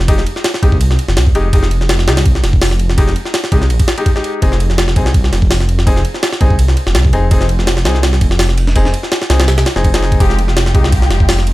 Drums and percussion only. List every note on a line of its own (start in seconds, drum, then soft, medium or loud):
0.08 kick loud
0.08 ride medium
0.18 snare soft
0.27 ride medium
0.36 snare soft
0.44 snare loud
0.44 ride medium
0.54 snare medium
0.63 kick loud
0.63 ride medium
0.72 kick loud
0.81 ride medium
0.91 snare soft
0.99 ride medium
1.08 snare medium
1.17 snare loud
1.17 ride medium
1.27 kick loud
1.35 ride medium
1.53 kick loud
1.53 ride medium
1.63 snare soft
1.71 ride medium
1.81 snare soft
1.89 snare loud
1.89 ride medium
1.99 snare medium
2.08 snare loud
2.08 ride medium
2.17 snare loud
2.17 ride medium
2.25 kick loud
2.25 ride medium
2.35 snare soft
2.44 snare medium
2.44 ride medium
2.53 kick loud
2.62 snare loud
2.62 open hi-hat medium
2.71 snare soft
2.79 ride medium
2.89 snare soft
2.98 kick loud
2.98 ride medium
3.08 snare soft
3.16 ride medium
3.25 snare soft
3.34 snare loud
3.34 ride medium
3.44 snare medium
3.52 kick loud
3.52 ride medium
3.62 snare soft
3.70 ride medium
3.80 kick loud
3.80 ride medium
3.88 snare loud
3.88 ride medium
3.98 ride medium
4.06 kick loud
4.06 ride medium
4.16 snare soft
4.24 ride medium
4.42 kick loud
4.42 ride medium
4.52 snare soft
4.60 ride medium
4.70 snare soft
4.78 snare loud
4.78 ride medium
4.88 snare medium
4.96 kick loud
4.96 ride medium
5.06 snare medium
5.14 kick loud
5.14 ride medium
5.24 snare soft
5.33 snare medium
5.33 ride medium
5.42 kick loud
5.51 snare loud
5.51 open hi-hat medium
5.60 snare soft
5.69 ride medium
5.79 snare soft
5.87 kick loud
5.87 ride medium
5.96 snare soft
6.05 ride medium
6.14 snare soft
6.23 snare loud
6.23 ride medium
6.32 snare medium
6.41 kick loud
6.41 ride medium
6.50 kick loud
6.59 ride medium
6.68 snare soft
6.77 ride medium
6.87 snare medium
6.95 snare loud
6.95 ride medium
7.05 kick loud
7.13 ride medium
7.31 kick loud
7.31 ride medium
7.41 snare soft
7.49 ride medium
7.59 snare soft
7.67 snare loud
7.67 ride medium
7.77 snare medium
7.85 snare loud
7.85 ride medium
7.95 snare soft
8.03 snare loud
8.03 ride medium
8.13 snare soft
8.21 kick medium
8.21 ride medium
8.31 snare medium
8.39 snare loud
8.39 open hi-hat medium
8.49 snare soft
8.58 ride medium
8.67 snare soft
8.76 kick loud
8.76 ride medium
8.85 snare soft
8.94 ride medium
9.03 snare soft
9.12 snare loud
9.12 ride medium
9.22 snare medium
9.30 snare loud
9.30 ride medium
9.40 snare loud
9.40 ride medium
9.48 snare loud
9.48 ride medium
9.58 snare loud
9.58 ride medium
9.66 snare loud
9.66 ride medium
9.76 snare medium
9.84 kick medium
9.84 ride medium
9.94 snare loud
9.94 ride medium
10.03 snare soft
10.12 kick medium
10.12 ride medium
10.20 kick loud
10.20 ride medium
10.30 snare soft
10.39 ride medium
10.48 snare soft
10.57 snare loud
10.57 ride medium
10.66 snare medium
10.75 kick loud
10.75 ride medium
10.84 snare medium
10.92 kick loud
10.92 ride medium
11.02 snare soft
11.10 snare medium
11.10 ride medium
11.20 kick medium
11.29 snare loud
11.29 open hi-hat medium
11.39 snare soft
11.47 ride medium